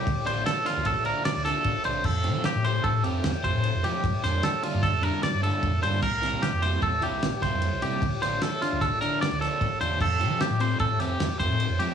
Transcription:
<<
  \new Staff \with { instrumentName = "Clean electric guitar" } { \time 5/4 \key bes \lydian \tempo 4 = 151 g'8 c''8 a'8 f'8 a'8 bes'8 d''8 a'4 c''8 | a'4 g'8 c''8 a'8 g'4 c''4 g'8~ | g'8 c''8 a'8 f'8 a'8 bes'8 d''8 a'4 c''8 | bes'4 g'8 c''8 a'8 g'4 c''4 g'8~ |
g'8 c''8 a'8 f'8 a'8 bes'8 d''8 a'4 c''8 | a'4 g'8 c''8 a'8 g'4 c''4 g'8 | }
  \new Staff \with { instrumentName = "Overdriven electric guitar" } { \clef bass \time 5/4 \key bes \lydian r8 <d f bes d'>8 r8 <d f bes d'>8 r8 <d f bes d'>8 r8 <d f bes d'>8 r8 <d f bes d'>8 | r8 <c f a c'>8 r8 <c f a c'>8 r8 <c f a c'>8 r8 <c f a c'>8 r8 <c f a c'>8 | r8 <d g bes d'>8 r8 <d g bes d'>8 r8 <d g bes d'>8 r8 <d g bes d'>8 r8 <d g bes d'>8 | r8 <c g bes e'>8 r8 <c g bes e'>8 r8 <c g bes e'>8 r8 <c g bes e'>8 r8 <c g bes e'>8 |
r8 <d f bes d'>8 r8 <d f bes d'>8 r8 <d f bes d'>8 r8 <d f bes d'>8 r8 <d f bes d'>8 | r8 <c f a c'>8 r8 <c f a c'>8 r8 <c f a c'>8 r8 <c f a c'>8 r8 <c f a c'>8 | }
  \new Staff \with { instrumentName = "Fingered electric bass" } { \clef bass \time 5/4 \key bes \lydian d,16 r16 a,,8 r8. d,8 a,,8 r8 d,8 r16 a,,8 c,8 | f,8. f8 a,8. a,8 f,8 e,16 r16 f,16 a,8 f,16 f8 | g,16 r16 f,8 r8. g,8 f,8 r8 g,8 r16 f,8 g,8 | c,8. c8 f,8. e,8 c,8 bes,,16 r16 c,16 f,8 c,16 c8 |
d,16 r16 a,,8 r8. d,8 a,,8 r8 d,8 r16 a,,8 e,8 | f,8. f8 a,8. a,8 f,8 e,16 r16 f,16 a,8 f,16 f8 | }
  \new DrumStaff \with { instrumentName = "Drums" } \drummode { \time 5/4 <bd cymr>8 cymr8 <cymr sn>8 <cymr sn>8 <bd cymr>8 cymr8 <cymr sn>8 <cymr sn>8 <bd cymr>8 cymr8 | <cymc bd>8 cymr8 <cymr sn>8 cymr8 <bd cymr>8 cymr8 <cymr sn>8 <bd cymr>8 cymr8 cymr8 | <bd cymr>8 <cymr sn>8 <cymr sn>8 cymr8 <bd cymr sn>8 cymr8 <cymr sn>8 cymr8 <bd cymr>8 cymr8 | <cymc bd>8 <cymr sn>8 <cymr sn>8 cymr8 <bd cymr>8 cymr8 <cymr sn>8 <bd cymr sn>8 cymr8 cymr8 |
<bd cymr>8 <cymr sn>8 <cymr sn>8 <cymr sn>8 <bd cymr sn>8 cymr8 <cymr sn>8 <cymr sn>8 <bd cymr>8 cymr8 | <cymc bd>8 cymr8 <cymr sn>8 cymr8 <bd cymr>8 <cymr sn>8 <cymr sn>8 <bd cymr>8 cymr8 cymr8 | }
>>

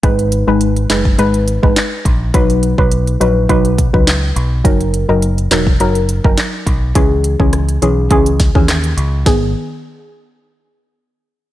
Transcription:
<<
  \new Staff \with { instrumentName = "Synth pluck" } { \time 4/4 \key gis \minor \tempo 4 = 104 <gis dis' b'>8. <gis dis' b'>16 r8 <gis dis' b'>16 r16 <gis dis' b'>16 r8 <gis dis' b'>16 r4 | <fis dis' b'>8. <fis dis' b'>16 r8 <fis dis' b'>16 r16 <fis dis' b'>16 r8 <fis dis' b'>16 r4 | <fis dis' ais'>8. <fis dis' ais'>16 r8 <fis dis' ais'>16 r16 <fis dis' ais'>16 r8 <fis dis' ais'>16 r4 | <e cis' gis'>8. <e cis' gis'>16 r8 <e cis' gis'>16 r16 <e cis' gis'>16 r8 <e cis' gis'>16 r4 |
<dis b gis'>8 r2. r8 | }
  \new Staff \with { instrumentName = "Picked electric bass" } { \clef bass \time 4/4 \key gis \minor gis,,8. gis,,8. fis,,8 gis,,8. gis,,16 r8 ais,,8 | b,,8. b,,8. ais,,8 b,,8. cis,8. b,,8 | r8. fis,,8. e,,8 fis,,8. fis,,16 r8 b,,8 | cis,8. cis,8. b,,8 cis,8. dis,8. cis,8 |
gis,,8 r2. r8 | }
  \new DrumStaff \with { instrumentName = "Drums" } \drummode { \time 4/4 <hh bd>16 hh16 hh8 hh16 hh16 <hc hh sn>16 bd16 hh16 hh16 hh16 bd16 <hc hh sn>8 <hh bd>8 | <hh bd>16 hh16 hh16 bd16 hh16 hh16 hh8 <hh bd>16 hh16 <hh bd>16 bd16 <hc hh sn>8 hh8 | <hh bd>16 hh16 hh8 hh16 hh16 <hc hh sn>16 bd16 hh16 hh16 hh16 bd16 <hc hh sn>8 <hh bd>8 | <hh bd>8 hh16 bd16 <hh ss>16 hh16 hh8 <hh bd>16 hh16 <hh bd sn>16 bd16 <hc hh ss sn>16 hh16 hh8 |
<bd sn>4 r4 r4 r4 | }
>>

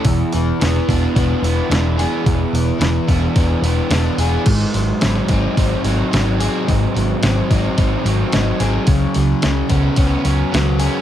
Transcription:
<<
  \new Staff \with { instrumentName = "Overdriven electric guitar" } { \time 4/4 \key e \mixolydian \tempo 4 = 109 e,8 e8 b8 d'8 b8 e8 d'8 gis'8 | e,8 e8 b8 d'8 b8 e8 d'8 gis'8 | gis,8 fis8 bis8 dis'8 bis8 fis8 dis'8 gis'8 | gis,8 fis8 bis8 dis'8 bis8 fis8 dis'8 gis'8 |
cis8 fis8 cis'8 b8 cis'8 fis8 b8 gis'8 | }
  \new Staff \with { instrumentName = "Overdriven electric guitar" } { \time 4/4 \key e \mixolydian e,4 e8 b8 d'8 b8 e8 b8 | e,4 e8 b8 d'8 b8 e8 b8 | gis,4 fis8 bis8 dis'8 bis8 fis8 bis8 | gis,4 fis8 bis8 dis'8 bis8 fis8 bis8 |
cis4 fis8 cis'8 b8 cis'8 fis8 cis'8 | }
  \new Staff \with { instrumentName = "Fingered electric bass" } { \clef bass \time 4/4 \key e \mixolydian e,,8 e,,8 e,,8 e,,8 e,,8 e,,8 e,,4 | e,,8 e,,8 e,,8 e,,8 e,,8 e,,8 e,,8 e,,8 | gis,,8 gis,,8 gis,,8 gis,,8 gis,,8 gis,,8 gis,,4 | gis,,8 gis,,8 gis,,8 gis,,8 gis,,8 gis,,8 gis,,8 gis,,8 |
cis,8 cis,8 cis,8 cis,8 cis,8 cis,8 cis,4 | }
  \new DrumStaff \with { instrumentName = "Drums" } \drummode { \time 4/4 <hho bd>8 hho8 <hho sn>16 sn16 <hho bd>8 <hho bd>8 hho8 <hho sn>8 <hho sn>8 | <hho bd>8 hho8 <hho sn>8 <hho bd>8 <hho bd>8 hho8 <hho sn>8 hho8 | <cymc bd>8 hho8 <hho sn>16 sn16 <hho bd>8 <hho bd>8 hho8 <hho sn>8 hho8 | <hho bd>8 hho8 <hho sn>8 <hho bd>8 <hho bd>8 hho8 <hho sn>8 <hho sn>8 |
<hho bd>8 hho8 <hho sn>8 <hho bd>8 <hho bd>8 hho8 <hho sn>8 hho8 | }
>>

